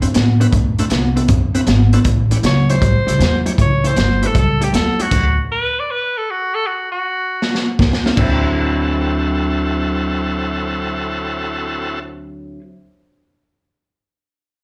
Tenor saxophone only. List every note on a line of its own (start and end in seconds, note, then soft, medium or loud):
2.46 2.73 C#5 loud
2.71 3.47 C5 loud
3.62 3.89 C#5 medium
3.87 4.28 C5 loud
4.26 4.37 A4 medium
4.38 4.65 A4 medium
4.63 4.74 G4 medium
4.75 5.03 A4 medium
5.01 5.39 F#4 medium
5.52 5.81 B4 loud
5.80 5.93 D5 medium
5.91 6.19 B4 medium
6.17 6.32 A4 medium
6.30 6.56 F#4 medium
6.55 6.68 A4 loud
6.67 6.91 F#4 medium
6.92 7.65 F#4 loud